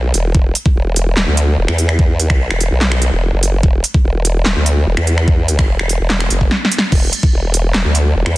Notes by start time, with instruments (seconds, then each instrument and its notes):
Already playing: wobble bass B1
0.14 wobble bass E1, closed hi-hat
0.35 wobble bass E1, kick
0.55 closed hi-hat
0.66 kick
0.76 wobble bass E1
0.96 closed hi-hat
1.17 wobble bass E1, snare, clap
1.27 wobble bass D2
1.37 closed hi-hat
1.58 wobble bass E1
1.68 wobble bass E2, finger snap
1.78 closed hi-hat
1.89 finger snap
1.99 kick
2.20 closed hi-hat
2.30 finger snap, kick
2.51 wobble bass E1, finger snap
2.61 closed hi-hat
2.71 wobble bass B1
2.81 snare, clap
2.92 finger snap
3.02 closed hi-hat
3.12 wobble bass E1
3.33 wobble bass F#1
3.43 closed hi-hat
3.63 wobble bass E1, kick
3.84 closed hi-hat
3.94 kick
4.04 wobble bass E1
4.25 closed hi-hat
4.46 wobble bass E1, snare, clap
4.56 wobble bass D2
4.66 closed hi-hat
4.87 wobble bass E1
4.97 wobble bass E2, finger snap
5.07 closed hi-hat
5.18 finger snap
5.28 kick
5.48 closed hi-hat
5.59 finger snap, kick
5.79 wobble bass E1, finger snap
5.89 closed hi-hat
6.00 wobble bass E1
6.10 snare, clap
6.20 finger snap
6.30 wobble bass F#1, closed hi-hat
6.41 kick
6.51 snare
6.65 snare
6.72 closed hi-hat
6.78 snare
6.92 wobble bass E1, kick, crash
7.13 closed hi-hat
7.23 kick
7.33 wobble bass E1
7.54 closed hi-hat
7.74 wobble bass E1, snare, clap
7.85 wobble bass D2
7.95 closed hi-hat
8.15 wobble bass E1
8.26 wobble bass E2, finger snap